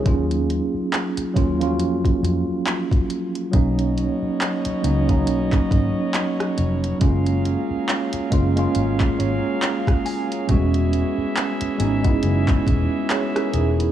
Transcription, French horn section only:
3.54 6.98 B2 medium
3.54 6.98 F#4 medium
3.54 10.45 A#4 medium
3.54 6.98 C#5 medium
3.54 6.98 D#5 medium
7.02 10.46 F#3 medium
7.02 13.92 C#4 medium
7.02 13.92 G#4 medium
7.02 10.46 F5 medium
10.49 13.92 E3 medium
10.49 13.92 F#4 medium
10.49 13.92 E5 medium

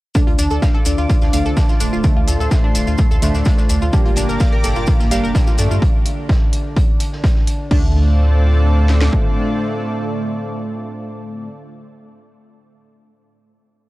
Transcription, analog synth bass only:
0.27 0.35 D2 medium
0.39 0.47 D2 medium
0.51 0.59 D2 medium
0.86 0.95 D2 medium
0.98 1.06 D2 medium
1.22 1.30 D2 medium
1.33 1.42 D2 medium
1.46 1.54 C2 medium
1.81 1.89 D1 medium
1.93 2.01 D1 medium
2.16 2.24 D2 medium
2.28 2.36 D2 loud
2.40 2.48 D2 medium
2.75 2.84 D1 medium
2.87 2.95 D2 medium
3.11 3.19 D2 medium
3.22 3.31 D2 medium
3.35 3.43 D2 medium
3.70 3.78 D2 medium
3.82 3.90 D2 medium
4.06 4.13 G1 medium
4.17 4.25 G1 loud
4.29 4.37 G1 medium
4.64 4.73 G1 medium
4.76 4.84 G1 medium
5.00 5.08 G1 medium
5.11 5.20 G1 medium
5.24 5.32 F1 medium
5.59 5.67 G2 medium
5.71 5.79 G2 medium
7.71 9.09 D2 medium

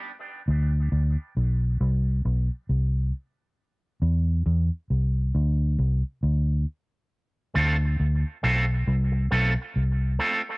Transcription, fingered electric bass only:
0.48 0.89 D2 loud
0.92 1.15 D2 medium
1.37 1.78 B1 medium
1.80 2.22 C2 medium
2.25 2.48 B1 medium
2.69 3.10 C2 medium
4.02 4.43 E2 medium
4.46 4.69 E2 loud
4.90 5.32 C2 medium
5.35 5.76 D2 loud
5.79 6.01 C2 medium
6.23 6.64 D2 medium
7.56 7.97 D2 loud
8.00 8.22 D2 medium
8.44 8.85 B1 medium
8.87 9.29 C2 medium
9.32 9.55 B1 medium
9.76 10.18 C2 medium

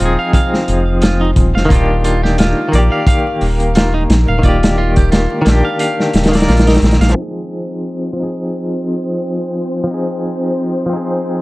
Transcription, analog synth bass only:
0.00 0.17 D#1 medium
0.68 1.33 F1 medium
1.36 1.53 D#1 loud
1.55 1.69 F1 medium
1.70 2.54 D#1 loud
2.73 2.89 A#1 medium
3.41 4.06 D#1 medium
4.10 4.26 A#1 loud
4.28 4.42 D#1 medium
4.44 5.27 D#1 loud
5.46 5.62 A#1 medium
6.14 6.48 D#1 medium
6.48 6.78 A#1 medium
6.82 6.98 A#1 medium
7.01 7.14 A#1 loud

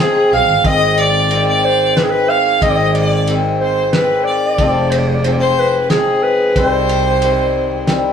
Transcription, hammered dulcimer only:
0.00 0.70 F3 medium
0.00 0.64 G#3 medium
0.00 0.33 C4 medium
0.65 1.30 D#3 medium
0.65 1.31 G#3 medium
0.65 0.98 C4 medium
1.31 1.96 D#3 medium
1.31 1.96 G#3 medium
1.31 1.65 C4 medium
1.97 2.62 D#3 medium
1.97 2.62 G#3 medium
1.97 2.30 C4 medium
2.63 3.27 D#3 medium
2.63 3.28 G#3 medium
2.63 2.96 C4 medium
3.28 3.94 D#3 medium
3.28 3.95 G#3 medium
3.28 3.62 C4 medium
3.95 4.64 D#3 medium
3.95 4.59 G#3 medium
3.95 4.28 C4 medium
4.60 5.25 F3 medium
4.60 5.25 G#3 medium
4.60 4.93 C4 medium
5.26 5.90 F3 medium
5.26 5.90 G#3 medium
5.26 5.59 C4 medium
5.91 6.61 F3 medium
5.91 6.61 G#3 medium
5.91 6.24 C4 medium
6.57 7.22 D#3 medium
6.57 7.23 G3 medium
6.57 6.90 C4 medium
7.24 7.87 D#3 medium
7.24 7.87 G3 medium
7.24 7.56 C4 medium
7.88 8.13 D#3 medium
7.88 8.13 G3 medium
7.88 8.13 C4 medium

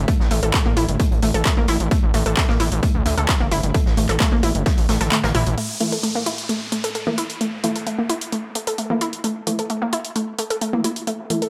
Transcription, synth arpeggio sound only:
0.08 0.11 A3 medium
0.31 0.36 A3 medium
0.43 0.50 A4 medium
0.54 0.59 A3 medium
0.66 0.70 A#3 loud
0.77 0.84 E4 loud
1.00 1.03 A3 medium
1.23 1.27 A3 medium
1.34 1.41 A4 medium
1.45 1.50 A3 medium
1.57 1.62 A#3 loud
1.68 1.76 E4 loud
1.91 1.94 A3 medium
2.14 2.19 A3 medium
2.26 2.33 A4 medium
2.37 2.42 A3 medium
2.49 2.53 A#3 loud
2.60 2.67 E4 loud
2.83 2.86 A3 medium
3.06 3.11 A3 medium
3.18 3.24 A4 medium
3.29 3.34 A3 medium
3.40 3.45 A#3 loud
3.52 3.59 E4 loud
3.74 3.77 A3 medium
3.97 4.02 A3 medium
4.09 4.16 A4 medium
4.20 4.25 A3 medium
4.32 4.37 A#3 loud
4.43 4.51 E4 loud
4.66 4.69 A3 medium
4.89 4.94 A3 medium
5.01 5.08 A4 medium
5.12 5.17 A3 medium
5.24 5.28 A#3 loud
5.35 5.42 E4 loud
5.58 5.61 A3 medium
5.80 5.85 A3 medium
5.92 5.99 A4 medium
6.03 6.08 A3 medium
6.15 6.20 A#3 loud
6.26 6.34 E4 loud
6.49 6.52 A3 medium
6.72 6.77 A3 medium
6.84 6.91 A4 medium
6.95 7.00 A3 medium
7.07 7.11 A#3 loud
7.18 7.25 E4 loud
7.41 7.44 A3 medium
7.64 7.69 A3 medium
7.76 7.82 A4 medium
7.87 7.92 A3 medium
7.98 8.03 A#3 loud
8.10 8.17 E4 loud
8.32 8.35 A3 medium
8.55 8.60 A3 medium
8.67 8.74 A4 medium
8.78 8.83 A3 medium
8.90 8.95 A#3 loud
9.01 9.09 E4 loud
9.24 9.27 A3 medium
9.47 9.52 A3 medium
9.59 9.66 A4 medium
9.70 9.75 A3 medium
9.82 9.86 A#3 medium
9.93 10.00 E4 loud
10.16 10.19 A3 medium
10.39 10.44 A3 medium
10.50 10.57 A4 medium
10.61 10.66 A3 medium
10.73 10.78 A#3 loud
10.84 10.92 E4 loud
11.07 11.10 A3 medium
11.30 11.35 A3 medium
11.42 11.49 A4 medium

